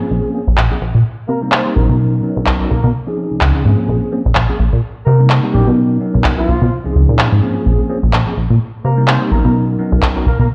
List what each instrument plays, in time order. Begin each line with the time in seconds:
Already playing: tine electric piano F3 A#3 C4 C#4 G#4
0.11 analog synth bass A#1
0.34 tine electric piano F3 A#3 C4 C#4 G#4
0.47 analog synth bass A#1
0.58 analog synth bass A#1, clap
0.71 tine electric piano F3 A#3 C4 C#4 G#4
0.81 analog synth bass A#1
0.95 analog synth bass A#2
1.28 analog synth bass C3, horn section A#3 A#4
1.41 tine electric piano G3 A#3 C4 D#4 A#4
1.52 horn section C4 C5, clap
1.65 tine electric piano G3 A#3 C4 D#4 G4
1.75 analog synth bass A#1, tine electric piano F#3 B3 C#4 D#4 A#4, horn section A#3 A#4
1.89 analog synth bass B2, horn section A#3 A#4
2.23 tine electric piano F#3 B3 C#4 D#4 A#4
2.36 analog synth bass B1
2.46 analog synth bass B1, clap
2.60 tine electric piano F#3 B3 C#4 D#4 A#4
2.70 analog synth bass B1, horn section A#3 A#4
2.83 analog synth bass B2, horn section A#3 A#4
3.06 tine electric piano F3 C4 C#4 D#4 G#4
3.31 analog synth bass C#2
3.41 analog synth bass C#2, clap
3.55 analog synth bass C#3
3.65 analog synth bass G#2, tine electric piano F3 A#3 C4 C#4 G#4
3.88 analog synth bass A#1
4.12 tine electric piano F3 A#3 C4 C#4 G#4
4.25 analog synth bass A#1
4.35 analog synth bass A#1, clap
4.49 tine electric piano F3 A#3 C4 C#4 G#4
4.59 analog synth bass A#1
4.73 analog synth bass A#2
5.06 analog synth bass C3, horn section A#3 A#4
5.19 tine electric piano G3 A#3 C4 D#4 A#4
5.30 clap
5.43 tine electric piano G3 A#3 C4 D#4 G4
5.53 analog synth bass A#1, tine electric piano F#3 B3 C#4 D#4 A#4, horn section G3 G4
5.67 analog synth bass B2
6.00 tine electric piano F#3 B3 C#4 D#4 A#4
6.14 analog synth bass B1
6.24 analog synth bass B1, clap
6.37 horn section F3 F4, tine electric piano F#3 B3 C#4 D#4 A#4
6.48 analog synth bass B1
6.62 analog synth bass B2
6.84 analog synth bass C#2, tine electric piano F3 C4 C#4 D#4 G#4
6.96 analog synth bass C#2
7.09 analog synth bass A#2
7.19 clap
7.32 analog synth bass G#2
7.42 tine electric piano F3 A#3 C4 C#4 G#4
7.66 analog synth bass A#1
7.89 tine electric piano F3 A#3 C4 C#4 G#4
8.03 analog synth bass A#1
8.13 analog synth bass A#1, clap
8.26 tine electric piano F3 A#3 C4 C#4 G#4
8.37 analog synth bass A#1
8.50 analog synth bass A#2
8.84 analog synth bass C3, horn section A#3 A#4
8.97 tine electric piano G3 A#3 C4 D#4 A#4
9.08 horn section C4 C5, clap
9.21 tine electric piano G3 A#3 C4 D#4 G4
9.31 analog synth bass A#1, tine electric piano F#3 B3 C#4 D#4 A#4, horn section A#3 A#4
9.45 analog synth bass B2, horn section A#3 A#4
9.79 tine electric piano F#3 B3 C#4 D#4 A#4
9.92 analog synth bass B1
10.02 analog synth bass B1, clap
10.16 tine electric piano F#3 B3 C#4 D#4 A#4
10.26 analog synth bass B1, horn section A#3 A#4
10.39 analog synth bass B2, horn section A#3 A#4